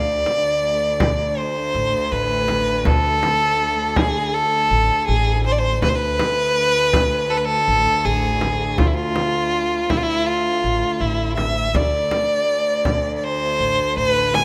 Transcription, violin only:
0.00 1.39 D5 medium
1.37 2.14 C5 medium
2.12 2.87 B4 medium
2.86 3.98 A4 medium
3.97 4.35 G#4 medium
4.34 5.07 A4 medium
5.07 5.42 G#4 medium
5.46 5.53 C5 medium
5.52 5.60 D5 medium
5.59 5.82 C5 medium
5.83 5.90 B4 medium
5.89 5.97 C5 medium
5.96 7.32 B4 medium
7.30 7.39 A4 medium
7.37 7.46 B4 medium
7.45 8.07 A4 medium
8.05 8.80 G#4 medium
8.78 8.88 F4 medium
8.87 8.95 E4 medium
8.93 9.91 F4 medium
9.90 9.99 E4 medium
9.97 10.05 F4 medium
10.03 10.28 E4 medium
10.27 11.03 F4 medium
11.01 11.36 E4 medium
11.37 11.78 E5 medium
11.76 13.16 D5 medium
13.16 13.25 D5 medium
13.24 13.97 C5 loud
13.98 14.36 B4 loud
14.35 14.44 G#5 medium

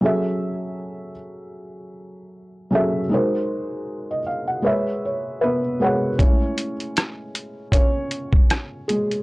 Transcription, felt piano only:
0.01 1.10 F#3 medium
0.01 1.11 C#4 medium
0.01 1.12 G#4 medium
0.01 1.12 A4 medium
0.06 1.13 E5 medium
2.71 3.01 F#3 medium
2.71 3.01 C#4 medium
2.71 3.02 G#4 medium
2.71 3.02 A4 medium
2.75 3.03 E5 medium
3.09 4.18 G#3 medium
3.09 4.19 D#4 medium
3.09 4.20 F#4 medium
3.09 4.20 A#4 medium
3.14 4.21 C5 medium
4.11 4.26 D#5 medium
4.27 4.48 F5 medium
4.48 4.85 F#5 medium
4.62 5.59 G#3 medium
4.62 5.59 G#4 medium
4.62 5.40 B4 medium
4.62 5.04 C#5 medium
4.67 5.40 E5 medium
5.05 5.40 C#5 medium
5.41 6.16 B3 medium
5.41 5.80 B4 medium
5.41 5.77 E5 medium
5.80 6.09 G#3 medium
5.80 6.09 G#4 medium
5.80 6.10 B4 medium
5.80 6.10 C#5 medium
5.84 6.11 F#5 medium
6.18 6.73 G#3 medium
6.18 6.73 A3 soft
6.18 7.70 C#4 medium
6.18 6.73 E4 medium
6.18 7.70 C#5 medium
7.72 8.85 C#4 medium
7.72 8.91 C#5 medium
8.88 9.23 G#3 medium
8.88 9.23 G#4 medium

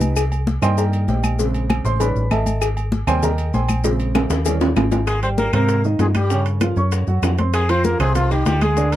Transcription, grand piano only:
0.00 0.15 D#4 medium
0.00 0.15 G4 medium
0.00 0.15 B4 medium
0.00 0.15 D#5 medium
0.62 1.35 D#3 medium
0.62 1.35 G3 medium
0.62 1.35 A#3 medium
0.62 0.77 C5 medium
0.62 0.77 D#5 medium
0.62 0.77 G5 medium
0.62 0.77 C6 loud
0.78 1.07 A#4 medium
0.78 1.07 D#5 medium
0.78 1.07 G5 medium
0.78 1.06 A#5 medium
1.09 1.37 G4 medium
1.09 1.37 C5 soft
1.09 1.37 D#5 soft
1.09 1.37 G5 medium
1.39 1.97 C#3 medium
1.39 1.97 G#3 medium
1.39 1.98 C4 medium
1.85 2.00 C5 medium
1.85 2.00 C6 loud
1.99 2.20 D#3 medium
1.99 2.21 G3 medium
1.99 2.21 C#4 medium
1.99 2.29 B4 medium
1.99 2.29 B5 medium
2.31 2.60 A4 medium
2.31 2.60 D#5 medium
2.31 2.60 E5 medium
2.31 2.60 A5 medium
3.07 3.28 C3 medium
3.07 3.28 G3 medium
3.07 3.28 A#3 medium
3.07 3.23 C5 loud
3.07 3.22 G5 medium
3.07 3.23 G#5 medium
3.07 3.23 C6 loud
3.23 3.52 A#4 medium
3.23 3.52 D#5 medium
3.23 3.52 G5 medium
3.23 3.52 A#5 medium
3.54 3.83 C5 medium
3.54 3.83 G5 medium
3.54 3.83 G#5 medium
3.54 3.82 C6 medium
3.84 4.28 C#3 medium
3.84 4.28 G#3 medium
3.84 4.28 C4 medium
4.45 4.66 E3 medium
4.45 4.66 G3 medium
4.45 4.66 C#4 medium
5.23 5.48 G3 medium
5.23 5.48 G4 medium
5.23 5.48 G5 medium
5.53 5.79 C3 medium
5.53 5.79 C4 medium
5.53 5.79 C5 medium
5.85 6.10 D#3 medium
5.85 6.10 D#4 medium
5.85 6.10 D#5 medium
6.15 6.28 G3 medium
6.15 6.28 G4 medium
6.15 6.28 G5 medium
6.30 6.56 C#3 medium
6.30 6.56 C#4 medium
6.30 6.56 C#5 medium
6.62 6.74 F3 medium
6.62 6.74 F4 medium
6.62 6.74 F5 medium
6.77 7.02 C#4 medium
6.77 7.02 C#5 medium
6.77 7.02 C#6 medium
7.08 7.33 F#3 medium
7.08 7.33 F#4 medium
7.08 7.33 F#5 medium
7.39 7.64 C4 medium
7.39 7.64 C5 medium
7.39 7.64 C6 medium
7.69 7.95 F3 medium
7.69 7.95 F4 medium
7.69 7.95 F5 medium
8.00 8.25 C3 medium
8.00 8.25 C4 medium
8.00 8.26 C5 medium
8.31 8.56 D#3 medium
8.31 8.56 D#4 medium
8.31 8.56 D#5 medium
8.62 8.74 G#3 medium
8.62 8.75 G#4 medium
8.62 8.75 G#5 medium
8.77 8.96 D3 medium
8.77 8.96 D4 medium
8.77 8.96 D5 medium

